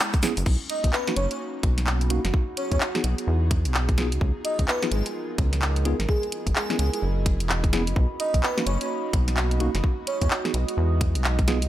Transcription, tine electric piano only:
0.23 0.32 B3 medium
0.23 0.32 C#4 medium
0.23 0.32 E4 medium
0.23 0.32 G#4 medium
1.08 1.13 A#3 medium
1.08 1.13 C#4 medium
1.08 1.13 D#4 medium
1.08 1.13 F#4 medium
2.10 2.19 A#3 medium
2.10 2.19 C#4 medium
2.10 2.19 D#4 medium
2.10 2.19 F#4 medium
2.95 3.01 B3 medium
2.95 3.01 D#4 medium
2.95 3.01 F#4 medium
2.95 3.01 G#4 medium
3.98 4.07 B3 medium
3.98 4.07 D#4 medium
3.98 4.07 F4 medium
3.98 4.07 G#4 medium
4.83 4.88 B3 medium
4.83 4.88 D#4 medium
4.83 4.88 F4 medium
4.83 4.88 G#4 medium
5.85 5.94 B3 medium
5.85 5.94 D#4 medium
5.85 5.94 F4 medium
5.85 5.94 G#4 medium
6.70 6.76 B3 medium
6.70 6.76 C#4 medium
6.70 6.76 E4 medium
6.70 6.76 G#4 medium
7.73 7.82 B3 medium
7.73 7.82 C#4 medium
7.73 7.82 E4 medium
7.73 7.82 G#4 medium
8.58 8.63 A#3 medium
8.58 8.63 C#4 medium
8.58 8.63 D#4 medium
8.58 8.63 F#4 medium
9.60 9.69 A#3 medium
9.60 9.69 C#4 medium
9.60 9.69 D#4 medium
9.60 9.69 F#4 medium
10.45 10.51 B3 medium
10.45 10.51 D#4 medium
10.45 10.51 F#4 medium
10.45 10.51 G#4 medium
11.48 11.57 B3 medium
11.48 11.57 D#4 medium
11.48 11.57 F4 medium
11.48 11.57 G#4 medium

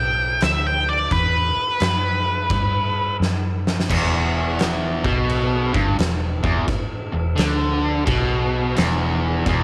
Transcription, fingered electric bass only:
0.00 0.40 B1 medium
0.42 1.10 D2 loud
1.11 1.54 E2 loud
1.56 muted fingered electric bass stroke soft
1.81 2.48 F#2 medium
2.50 3.18 G2 medium
3.20 3.87 F#2 loud
3.90 5.01 E1 loud
5.05 5.70 B1 loud
5.75 5.97 G1 loud
5.99 6.41 E1 medium
6.44 6.66 E1 medium
7.13 7.36 E1 medium
7.38 8.03 D2 medium
8.07 8.73 B1 medium
8.78 9.43 E1 loud
9.47 9.63 E1 loud

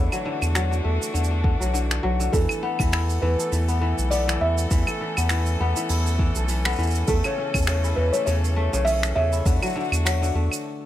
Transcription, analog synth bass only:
0.42 0.81 E2 medium
0.85 0.99 E2 medium
1.15 1.56 E2 medium
1.61 2.00 B1 medium
2.04 2.29 B1 medium
2.33 2.47 E2 medium
2.80 3.19 E2 medium
3.23 3.36 E2 medium
3.52 3.94 E2 medium
3.99 4.38 B1 medium
4.41 4.67 E2 medium
4.71 4.85 E2 medium
5.18 5.57 E2 medium
5.61 5.74 E2 medium
5.90 6.32 E2 medium
6.36 6.75 B1 medium
6.78 7.04 E2 medium
7.08 7.22 E2 medium
7.55 7.94 E2 medium
7.98 8.11 E2 medium
8.27 8.69 E2 medium
8.74 9.13 B1 medium
9.17 9.42 E2 medium
9.46 9.60 E2 medium
9.92 10.31 E2 medium
10.35 10.49 E2 medium

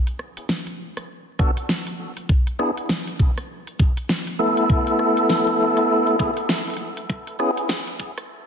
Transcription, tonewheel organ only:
1.39 1.51 B3 loud
1.39 1.51 D4 medium
1.39 1.51 F#4 medium
1.39 1.51 A4 loud
2.59 2.71 B3 medium
2.59 2.71 D4 medium
2.59 2.71 E4 medium
2.59 2.71 G#4 medium
4.39 6.16 A3 medium
4.39 6.16 B3 medium
4.39 6.16 E4 medium
4.39 6.16 A4 loud
6.19 6.31 A3 loud
6.19 6.31 B3 medium
6.19 6.31 E4 medium
6.19 6.31 G#4 loud
7.39 7.51 B3 medium
7.39 7.51 C#4 medium
7.39 7.51 E4 medium
7.39 7.51 G#4 medium

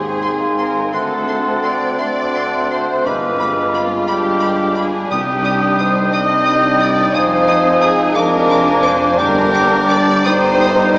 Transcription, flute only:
0.00 0.92 C6 soft
0.94 1.97 C6 soft
1.99 3.08 C6 soft
3.06 4.08 D6 medium
4.08 4.85 D6 medium
5.11 6.10 D#6 medium
6.13 7.12 D#6 medium
7.15 8.17 D#6 medium
8.15 9.18 D6 medium
9.18 10.28 D6 medium
10.26 10.98 A#5 medium

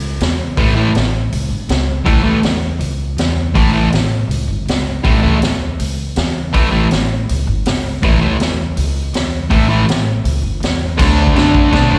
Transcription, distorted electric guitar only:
0.57 0.72 A2 medium
0.57 0.72 E3 medium
0.57 0.73 A3 loud
0.75 0.90 A2 medium
0.75 0.91 E3 medium
0.75 0.91 A3 loud
2.05 2.21 A2 medium
2.05 2.21 E3 loud
2.05 2.21 A3 loud
2.24 2.39 A2 medium
2.24 2.39 E3 loud
2.24 2.39 A3 loud
3.54 3.70 A2 medium
3.54 3.70 E3 medium
3.54 3.70 A3 medium
3.73 3.88 A2 medium
3.73 3.89 E3 loud
3.73 3.89 A3 loud
5.03 5.19 A2 medium
5.03 5.19 E3 medium
5.03 5.19 A3 medium
5.22 5.37 A2 medium
5.22 5.37 E3 medium
5.22 5.38 A3 medium
6.53 6.68 A2 medium
6.53 6.68 E3 medium
6.53 6.68 A3 loud
6.71 6.87 A2 medium
6.71 6.87 E3 loud
6.71 6.87 A3 loud
8.02 8.17 A2 medium
8.02 8.18 E3 loud
8.02 8.18 A3 medium
8.21 8.36 A2 medium
8.21 8.36 E3 loud
8.21 8.36 A3 loud
9.50 9.65 A2 medium
9.50 9.66 E3 medium
9.50 9.66 A3 medium
9.69 9.84 A2 medium
9.69 9.84 E3 medium
9.69 9.85 A3 loud
10.97 11.34 D3 medium
10.97 11.36 A3 loud
10.97 11.37 D4 loud
11.35 11.70 D3 medium
11.35 11.73 A3 medium
11.35 11.73 D4 medium
11.71 11.99 D3 medium
11.71 11.94 A3 loud
11.71 11.90 D4 loud
11.91 11.99 A3 medium
11.91 11.99 D4 medium

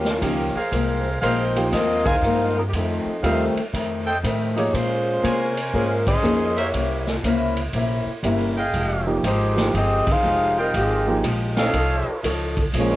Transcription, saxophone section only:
0.00 0.57 C#4 medium
0.00 0.57 F4 medium
0.00 0.57 A#4 medium
1.23 1.70 A#3 medium
1.23 1.69 D#4 medium
1.23 1.69 F4 medium
1.23 1.69 C5 medium
1.73 2.06 C4 medium
1.73 2.06 F4 medium
1.73 2.05 A#4 medium
1.73 2.06 D#5 medium
2.06 2.56 D#4 medium
2.06 2.56 A#4 medium
2.06 2.56 C5 medium
2.06 2.56 F5 medium
2.58 2.63 F3 medium
2.58 2.63 C4 medium
2.58 2.63 D#4 medium
2.58 2.63 A#4 medium
2.69 2.73 G4 soft
2.75 3.24 F3 medium
2.75 3.24 C4 medium
2.75 3.24 D#4 medium
2.75 3.24 A4 medium
4.57 4.72 A#3 medium
4.57 4.72 D#4 medium
4.57 4.73 G4 medium
4.57 4.72 C#5 medium
4.74 5.57 G#3 medium
4.74 5.57 C#4 medium
4.74 5.57 F4 medium
4.74 5.57 C5 loud
5.75 6.05 G#3 medium
5.75 6.05 C#4 medium
5.75 6.05 F4 medium
5.75 6.05 A#4 medium
6.08 6.54 C#4 medium
6.08 6.54 G#4 medium
6.08 6.54 C5 medium
6.08 6.54 D#5 medium
6.59 7.08 A#3 medium
6.59 7.08 E4 medium
6.59 7.08 G4 medium
6.59 7.08 C#5 medium
9.26 9.72 G#3 medium
9.26 9.72 D#4 medium
9.26 9.72 G4 medium
9.26 9.72 C5 medium
9.77 10.09 C4 medium
9.77 10.09 G4 medium
9.77 10.09 G#4 medium
9.77 10.09 D#5 medium
10.11 10.59 D#4 medium
10.11 10.59 G#4 medium
10.11 10.59 C5 medium
10.11 10.59 F5 loud
10.60 10.75 G3 medium
10.60 10.74 C4 medium
10.60 10.75 D#4 medium
10.60 10.74 A#4 medium
10.76 11.22 D#3 medium
10.76 11.22 C4 medium
10.76 11.22 G4 medium
10.76 11.22 G#4 medium

